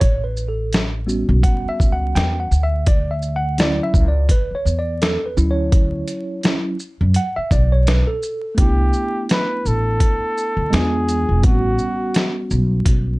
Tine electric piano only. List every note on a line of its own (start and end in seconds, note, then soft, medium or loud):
0.01 0.23 C#5 medium
0.24 0.46 B4 medium
0.48 0.82 A4 medium
1.07 2.46 G3 medium
1.07 2.46 B3 soft
1.07 2.47 C#4 soft
1.07 2.47 F#4 medium
1.44 1.68 F#5 loud
1.69 1.93 E5 loud
1.92 2.14 F#5 loud
2.15 2.38 G5 loud
2.40 2.64 F#5 medium
2.63 2.85 E5 loud
2.88 3.12 D5 medium
3.11 3.35 E5 medium
3.36 3.57 F#5 loud
3.58 4.08 F#3 medium
3.58 4.08 C#4 soft
3.58 4.08 E4 medium
3.58 3.81 D5 loud
3.83 4.05 E5 loud
4.08 4.31 D5 medium
4.31 4.55 B4 loud
4.55 4.79 C#5 medium
4.79 5.02 D5 medium
5.02 5.26 A4 loud
5.26 5.36 B4 medium
5.37 6.40 F#3 medium
5.37 6.40 C#4 medium
5.37 6.40 E4 medium
5.51 6.53 C#5 medium
6.44 6.76 F#3 soft
6.44 6.76 C#4 soft
6.44 6.76 E4 medium
7.16 7.37 F#5 loud
7.36 7.52 E5 loud
7.52 7.72 D5 medium
7.72 7.88 C#5 medium
7.88 8.08 B4 loud
8.07 8.55 A4 medium
8.55 10.67 A3 medium
8.55 10.68 B3 medium
8.60 10.69 D4 medium
8.60 10.71 E4 medium
10.70 11.43 G#3 medium
10.70 11.41 B3 medium
10.70 11.44 D4 medium
10.75 11.45 F4 medium
11.40 13.19 G3 medium
11.40 13.19 B3 medium
11.45 11.52 C4 soft
11.45 13.19 F#4 medium
11.52 13.19 C#4 medium